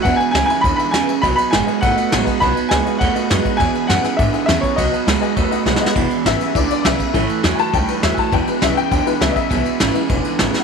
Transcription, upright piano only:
X:1
M:4/4
L:1/16
Q:1/4=203
K:E
V:1 name="Upright piano"
f2 g2 g2 g2 b2 b2 g3 z | b2 b2 g4 f8 | b4 g4 f8 | g4 f4 e4 e2 c2 |
d12 z4 | z16 | z16 | z16 |
z16 |]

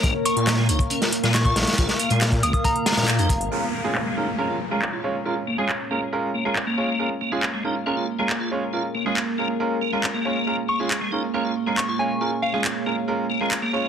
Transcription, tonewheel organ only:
X:1
M:4/4
L:1/16
Q:1/4=138
K:Bbm
V:1 name="Tonewheel organ"
B, z B, F z A, E z D F z A, z F z2 | F z B, A, z2 B, z3 A, D z E z2 | z2 B, F z A, E z D F z A, z F z2 | F z B, A, z2 B, z3 B, A, z B,3- |
B, z B, F z A, E z D F z A, z F z2 | F z B, A, z2 B, z3 B, A, z B,3- | B, z B, F z A, E z D F z A, z F z2 | F z B, A, z2 B, z3 B, A, z B,3 |]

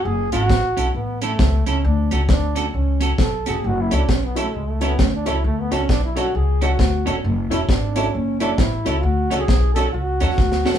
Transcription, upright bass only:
X:1
M:4/4
L:1/8
Q:"Swing" 1/4=134
K:F#m
V:1 name="Upright bass" clef=bass
F,,, G,,, A,,, B,,, A,,,2 C,, C,, | D,, C,, D,,2 C,,2 B,,, E,,, | F,,, C,, B,,,2 C,,2 D,, C,, | D,, C,, B,,,2 C,,2 D,, E,,, |
F,,, E,,, G,,,2 F,,,2 A,,, C,, | D,, C,, B,,,2 C,, E,, D,, E,,, |]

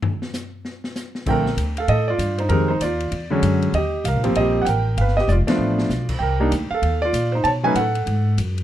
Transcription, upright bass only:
X:1
M:4/4
L:1/8
Q:"Swing" 1/4=194
K:Bb
V:1 name="Upright bass" clef=bass
z8 | B,,,2 D,,2 A,,2 G,,2 | F,,2 E,,2 =E,,2 ^F,,2 | E,,2 (3C,, B,,, G,,, B,,,2 A,,,2 |
G,,,2 F,,, z A,,,2 =B,,,2 | C,,2 D,, z E,,2 B,,2 | =B,,2 A,,2 _A,,2 ^F,,2 |]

